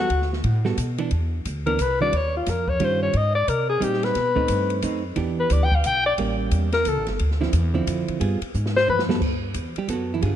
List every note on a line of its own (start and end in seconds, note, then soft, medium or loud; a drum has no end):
0.00 0.29 F#4 medium
0.10 0.43 D2 medium
0.10 kick soft
0.10 ride medium
0.22 snare soft
0.33 snare soft
0.44 0.76 A2 loud
0.44 kick soft
0.44 ride medium
0.65 0.76 G3 medium
0.65 0.76 B3 medium
0.65 0.76 F#4 medium
0.65 0.76 A4 medium
0.65 snare soft
0.78 1.10 B2 medium
0.78 kick soft
0.78 hi-hat pedal medium
0.78 ride medium
0.98 1.10 E3 medium
0.98 1.10 B3 medium
0.98 1.11 D4 medium
0.98 ride soft
1.11 1.44 E2 medium
1.11 kick soft
1.11 ride medium
1.45 1.78 D2 loud
1.45 kick soft
1.45 hi-hat pedal medium
1.45 ride medium
1.67 1.78 E3 medium
1.67 1.78 B3 medium
1.67 1.78 D4 medium
1.67 1.83 A#4 medium
1.67 ride soft
1.79 2.12 C2 medium
1.79 2.01 B4 medium
1.79 kick soft
1.79 hi-hat pedal medium
1.79 ride medium
2.01 2.12 D#3 medium
2.01 2.12 G3 medium
2.01 2.12 C#4 medium
2.01 2.12 F4 medium
2.01 2.18 D5 loud
2.13 2.45 D#2 medium
2.13 kick soft
2.13 ride medium
2.17 2.36 C#5 medium
2.37 2.52 F4 medium
2.46 2.79 F2 medium
2.46 2.71 A#4 medium
2.46 kick soft
2.46 snare soft
2.46 hi-hat pedal soft
2.46 ride medium
2.68 2.86 C#5 loud
2.68 kick medium
2.80 3.13 G2 medium
2.80 3.14 D#3 soft
2.80 3.14 G3 medium
2.80 3.14 C#4 medium
2.80 3.15 F4 medium
2.80 kick soft
2.80 ride medium
2.85 3.02 C5 medium
3.03 3.18 C#5 medium
3.13 3.47 G#2 medium
3.13 3.35 D#5 loud
3.13 kick soft
3.13 ride medium
3.35 3.50 D5 loud
3.48 3.81 C3 loud
3.48 3.69 A#4 medium
3.48 kick soft
3.48 hi-hat pedal medium
3.48 ride medium
3.70 3.85 G#4 medium
3.80 4.14 A#2 medium
3.80 4.15 G3 soft
3.80 4.15 C4 medium
3.80 4.15 D#4 medium
3.80 4.05 G4 medium
3.80 kick soft
3.80 hi-hat pedal medium
3.80 ride medium
3.93 snare soft
4.03 4.83 B4 loud
4.03 snare soft
4.03 ride soft
4.15 4.48 B2 medium
4.15 kick soft
4.15 snare soft
4.15 ride medium
4.36 4.80 A3 medium
4.36 4.80 C4 medium
4.36 4.80 D#4 medium
4.36 kick medium
4.48 4.82 G2 loud
4.48 kick soft
4.48 hi-hat pedal medium
4.48 ride medium
4.70 ride soft
4.82 5.16 F#2 medium
4.82 5.02 A3 medium
4.82 5.02 C4 medium
4.82 5.02 D#4 medium
4.82 kick soft
4.82 hi-hat pedal medium
4.82 ride medium
5.16 5.49 E2 medium
5.16 5.67 E3 medium
5.16 5.67 B3 medium
5.16 5.67 D4 medium
5.16 5.68 G4 medium
5.16 kick soft
5.16 ride medium
5.40 5.54 B4 medium
5.50 5.83 D2 loud
5.50 5.66 D5 medium
5.50 kick soft
5.50 hi-hat pedal medium
5.50 ride medium
5.64 5.77 G5 loud
5.72 5.88 F5 medium
5.72 kick medium
5.84 6.17 B1 medium
5.84 6.06 G5 loud
5.84 kick soft
5.84 hi-hat pedal medium
5.84 ride medium
6.06 6.13 D5 loud
6.18 6.51 A1 medium
6.18 6.69 G3 medium
6.18 6.69 A#3 medium
6.18 6.70 C#4 medium
6.18 kick soft
6.18 ride medium
6.51 6.84 E2 loud
6.51 kick soft
6.51 hi-hat pedal medium
6.51 ride medium
6.72 6.90 A#4 loud
6.72 snare medium
6.72 ride medium
6.85 6.97 C#2 medium
6.85 7.08 A4 medium
6.85 kick soft
6.85 hi-hat pedal medium
6.85 ride medium
6.97 7.08 A1 medium
7.07 7.18 G1 medium
7.07 snare soft
7.07 ride soft
7.19 7.52 D2 medium
7.19 kick soft
7.19 ride medium
7.31 snare soft
7.41 7.52 D3 medium
7.41 7.52 F3 medium
7.41 7.52 C4 medium
7.41 7.52 E4 medium
7.41 snare soft
7.53 7.85 E2 loud
7.53 kick soft
7.53 hi-hat pedal medium
7.53 ride medium
7.74 8.18 D3 medium
7.74 8.18 F3 medium
7.74 8.18 C4 medium
7.74 8.18 E4 medium
7.87 8.06 F2 medium
7.87 kick soft
7.87 hi-hat pedal medium
7.87 ride medium
8.08 muted upright bass stroke soft
8.08 ride soft
8.20 8.40 G2 medium
8.20 8.39 G3 medium
8.20 8.39 B3 medium
8.20 8.39 F4 medium
8.20 8.39 G#4 medium
8.20 kick soft
8.20 ride medium
8.42 muted upright bass stroke soft
8.42 ride medium
8.54 8.87 G#2 loud
8.54 hi-hat pedal medium
8.66 snare medium
8.77 8.88 C5 loud
8.77 snare medium
8.88 9.21 F2 medium
8.88 9.02 B4 loud
8.88 floor tom medium
8.99 snare medium
9.09 9.20 G3 medium
9.09 9.20 B3 medium
9.09 9.21 F#4 medium
9.09 9.21 A4 medium
9.09 snare medium
9.21 9.54 G2 medium
9.21 kick medium
9.21 crash medium
9.54 9.74 E2 medium
9.54 kick soft
9.54 hi-hat pedal medium
9.54 ride medium
9.76 9.89 G3 medium
9.76 9.89 G4 medium
9.76 muted upright bass stroke soft
9.76 ride soft
9.88 10.21 F#2 medium
9.88 10.21 B3 medium
9.88 9.92 F#4 medium
9.88 10.23 A4 medium
9.88 kick soft
9.88 hi-hat pedal medium
9.88 ride medium
9.93 10.12 F#3 medium
9.93 10.11 F#4 medium
10.14 10.24 E3 medium
10.14 10.22 E4 medium
10.21 10.36 G2 medium
10.21 10.36 G3 medium
10.21 10.25 B3 medium
10.21 10.36 F4 medium
10.21 10.36 G#4 medium
10.21 kick soft
10.21 ride medium
10.25 10.36 D3 medium
10.25 10.36 D4 medium